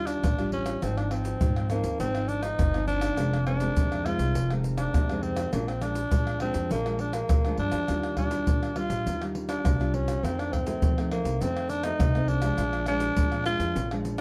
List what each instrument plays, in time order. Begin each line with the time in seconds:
Already playing: upright bass D#2, nylon-string guitar D#3 G3 D4 F4
0.07 tenor saxophone D4, pandeiro, tamborim, shaker
0.24 upright bass A1, pandeiro, tamborim, shaker, surdo
0.39 nylon-string guitar G3 D4 F4, pandeiro, tamborim, shaker
0.52 tenor saxophone C#4, pandeiro
0.66 pandeiro, tamborim, shaker
0.82 upright bass G#1, nylon-string guitar G#2 F3 C4 D#4, tenor saxophone C4, pandeiro, tamborim, shaker, surdo
0.97 tenor saxophone D4, pandeiro, tamborim, shaker
1.11 nylon-string guitar F3 C4 D#4, tenor saxophone C4, pandeiro, tamborim
1.25 pandeiro, shaker
1.41 upright bass G#2, nylon-string guitar D#3 F3 C4 D#4, pandeiro, shaker, surdo
1.56 pandeiro, tamborim, shaker
1.70 nylon-string guitar F3 C4 D#4, tenor saxophone A#3, pandeiro, tamborim, shaker
1.84 upright bass D#2, pandeiro, shaker
2.00 upright bass G#1, nylon-string guitar G#2, tenor saxophone C4, pandeiro, shaker, surdo
2.15 nylon-string guitar F3 C4 D#4, pandeiro, tamborim, shaker
2.28 tenor saxophone D4, pandeiro, shaker
2.43 tenor saxophone D#4, pandeiro, tamborim, shaker
2.59 upright bass G1, nylon-string guitar D#3, pandeiro, tamborim, shaker, surdo
2.74 nylon-string guitar F3 C4 D#4, pandeiro, tamborim, shaker
2.88 tenor saxophone D4, pandeiro, shaker
3.01 pandeiro, tamborim, shaker
3.17 upright bass F1, nylon-string guitar F2 D#3 G#3 C4, pandeiro, tamborim, shaker, surdo
3.33 pandeiro, tamborim, shaker
3.46 nylon-string guitar D#3 G#3 C4, tenor saxophone D4, pandeiro, tamborim
3.60 nylon-string guitar D#3 G#3 C4, pandeiro, shaker
3.76 upright bass F2, nylon-string guitar C3 D#3 G#3 C4, pandeiro, shaker, surdo
3.92 pandeiro, tamborim, shaker
4.05 nylon-string guitar D#3 G#3 C4, tenor saxophone F4, pandeiro, tamborim
4.19 upright bass C2, pandeiro, shaker
4.35 upright bass F1, nylon-string guitar F2, pandeiro, shaker, surdo
4.50 nylon-string guitar D#3 G#3 C4, pandeiro, tamborim, shaker
4.64 pandeiro, shaker
4.78 tenor saxophone D4, pandeiro, tamborim, shaker
4.94 upright bass F2, nylon-string guitar C3, pandeiro, tamborim, shaker, surdo
5.09 nylon-string guitar D#3 G#3 C4, pandeiro, tamborim, shaker
5.22 tenor saxophone C4, pandeiro
5.37 pandeiro, tamborim, shaker
5.53 upright bass A#1, nylon-string guitar A#2 F3 G#3 D4, tenor saxophone A#3, pandeiro, tamborim, shaker, surdo
5.68 tenor saxophone C4, pandeiro, tamborim, shaker
5.81 nylon-string guitar F3 G#3 D4, tenor saxophone D4, pandeiro, tamborim, shaker
5.95 pandeiro, shaker
6.11 nylon-string guitar F2 F3 G#3 D4, upright bass A#2, pandeiro, shaker, surdo
6.27 pandeiro, tamborim, shaker
6.40 nylon-string guitar F3 G#3 D4, tenor saxophone C4, pandeiro, tamborim
6.54 upright bass F2, pandeiro, shaker
6.71 upright bass A#1, nylon-string guitar A#2, tenor saxophone A#3, pandeiro, shaker, surdo
6.86 nylon-string guitar F3 G#3 D4, pandeiro, tamborim, shaker
6.99 tenor saxophone D4, pandeiro
7.13 tenor saxophone A#3, pandeiro, tamborim, shaker
7.29 upright bass D2, nylon-string guitar F2, pandeiro, tamborim, shaker, surdo
7.45 nylon-string guitar F3 G#3 D4, pandeiro, tamborim, shaker
7.57 upright bass G2, tenor saxophone D4, pandeiro
7.72 upright bass F2, pandeiro, tamborim, shaker
7.88 upright bass D#2, nylon-string guitar D#3 G3 D4 F4, pandeiro, tamborim, shaker, surdo
8.03 pandeiro, tamborim, shaker
8.17 nylon-string guitar G3 D4 F4, tenor saxophone D4, pandeiro, tamborim, surdo
8.31 nylon-string guitar G3 D4 F4, pandeiro, shaker
8.47 nylon-string guitar A#2, upright bass D#3, pandeiro, shaker, surdo
8.63 pandeiro, tamborim, shaker
8.76 nylon-string guitar G3 D4 F4, tenor saxophone F4, pandeiro, tamborim
8.90 upright bass A#1, pandeiro, shaker
9.06 upright bass D#2, nylon-string guitar D#3, pandeiro, shaker, surdo
9.21 nylon-string guitar G3 D4 F4, pandeiro, tamborim, shaker
9.35 pandeiro
9.49 tenor saxophone D4, pandeiro, tamborim, shaker
9.65 upright bass C2, nylon-string guitar A#2, pandeiro, tamborim, shaker, surdo
9.80 nylon-string guitar G3 D4 F4, pandeiro, tamborim, shaker
9.94 tenor saxophone C#4, pandeiro
10.08 pandeiro, tamborim, shaker
10.23 upright bass F2, nylon-string guitar F2 D#3 A3 C4, tenor saxophone C4, pandeiro, tamborim, shaker, surdo
10.39 tenor saxophone D4, pandeiro, tamborim, shaker
10.53 tenor saxophone C4, pandeiro, tamborim, surdo
10.66 nylon-string guitar D#3 A3 C4, pandeiro, shaker
10.82 nylon-string guitar C3, upright bass F3, pandeiro, shaker, surdo
10.98 nylon-string guitar D#3 A3 C4, pandeiro, tamborim, shaker
11.11 tenor saxophone A#3, pandeiro, tamborim
11.25 upright bass C2, pandeiro, shaker
11.40 upright bass F2, nylon-string guitar F2 D#3 A3 C4, tenor saxophone C4, pandeiro, shaker, surdo
11.57 pandeiro, tamborim, shaker
11.69 tenor saxophone D4, pandeiro, shaker
11.83 nylon-string guitar D#3 A3 C4, tenor saxophone D#4, pandeiro, tamborim, shaker
11.99 upright bass C2, nylon-string guitar C3, pandeiro, tamborim, shaker, surdo
12.15 nylon-string guitar D#3 A3 C4, pandeiro, tamborim, shaker
12.28 tenor saxophone D4, pandeiro
12.42 nylon-string guitar F3 G#3 D4, pandeiro, tamborim, shaker
12.58 upright bass A#1, nylon-string guitar A#2, pandeiro, tamborim, shaker, surdo
12.73 pandeiro, tamborim, shaker
12.86 nylon-string guitar F3 G#3 D4, tenor saxophone D4, pandeiro, tamborim, shaker
13.00 pandeiro, shaker
13.16 nylon-string guitar F2 F3 G#3 D4, upright bass A#2, pandeiro, shaker, surdo
13.32 pandeiro, tamborim, shaker
13.46 nylon-string guitar F3 G#3 D4, tenor saxophone F4, pandeiro, tamborim, shaker
13.59 upright bass F2, pandeiro, shaker
13.76 upright bass A#1, nylon-string guitar A#2, pandeiro, shaker, surdo
13.91 nylon-string guitar F3 G#3 D4, pandeiro, tamborim, shaker
14.05 pandeiro, shaker